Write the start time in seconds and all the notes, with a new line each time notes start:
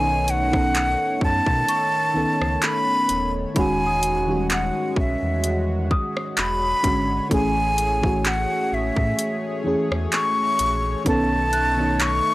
Already playing: B1 D#3 A3 B3 C#4 D#4 A4 C#5 G#5
0.28 F#5, closed hi-hat
0.52 D#3 B3 C#4 A4, kick, cross-stick
0.75 clap, closed hi-hat
1.21 F#2 A5, kick
1.46 B2, kick
1.68 C#6, closed hi-hat
2.14 C#2 D#3 B3 C#4 A4
2.41 C#2, cross-stick
2.62 B5, clap, closed hi-hat
3.09 D#1, closed hi-hat
3.55 E1 D#3 G#3 C#4 F#4 B5, kick, closed hi-hat
3.59 G#5
3.86 D#6
4.03 closed hi-hat
4.27 D#3 G3 C#4 F#4
4.50 F#5, clap, closed hi-hat
4.96 B1 E5, kick
5.22 E2
5.44 closed hi-hat
5.91 D#6, kick
6.17 cross-stick
6.37 E1 D3 C#5 B5, clap, closed hi-hat
6.83 G#1 D3 G#3 C#4 F#4, kick, closed hi-hat
7.30 A1 E3 A3 C#4 G#4, kick, closed hi-hat
7.34 G#5
7.78 closed hi-hat
8.02 E3 A3 C#4, kick
8.06 F#4
8.25 F#5, clap, closed hi-hat
8.72 A1 E5
8.96 A2, kick
9.19 closed hi-hat
9.64 E2 E3 A3 C#4 G#4
9.91 E2, cross-stick
10.12 C#6, clap, closed hi-hat
10.59 A#1, closed hi-hat
11.05 B1 D#3 B3 C#4 D#4 A4 A5, kick, closed hi-hat
11.53 F#6, closed hi-hat
11.77 D#3 B3 C#4 D#4
12.00 C#6, clap, closed hi-hat